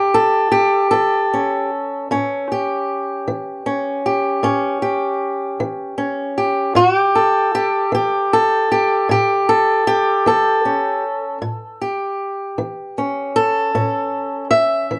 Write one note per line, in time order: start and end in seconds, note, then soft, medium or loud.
0.00 0.46 A2 medium
0.00 1.32 C#4 soft
0.00 0.50 G4 medium
0.00 0.13 A4 medium
0.14 0.90 A4 medium
0.52 1.70 G4 medium
0.91 1.63 E3 medium
0.91 2.48 A4 medium
1.34 2.11 C#4 soft
2.11 2.81 A2 medium
2.11 3.66 C#4 medium
2.52 4.05 G4 medium
3.28 3.97 E3 medium
3.66 4.43 C#4 medium
4.06 4.82 G4 medium
4.43 5.13 A2 medium
4.43 5.97 C#4 medium
4.82 6.37 G4 medium
5.60 6.30 E3 medium
5.98 6.79 C#4 soft
6.38 6.76 G4 medium
6.75 7.46 A2 medium
6.75 6.96 F#4 loud
6.96 7.53 G4 loud
7.15 8.32 A4 medium
7.55 7.93 G4 medium
7.92 8.62 E3 medium
7.92 8.70 G4 medium
8.33 9.48 A4 medium
8.72 9.10 G4 medium
9.09 9.79 A2 medium
9.09 9.86 G4 medium
9.49 10.26 A4 medium
9.87 11.03 G4 medium
10.26 10.96 E3 medium
10.26 11.81 A4 medium
10.65 11.38 C#4 soft
11.42 12.11 A2 medium
11.81 14.99 G4 medium
12.58 13.28 E3 medium
12.98 13.74 C#4 soft
13.36 14.50 A4 medium
13.75 14.44 A2 medium
13.75 14.99 C#4 soft
14.51 14.99 E5 medium
14.91 14.99 E3 medium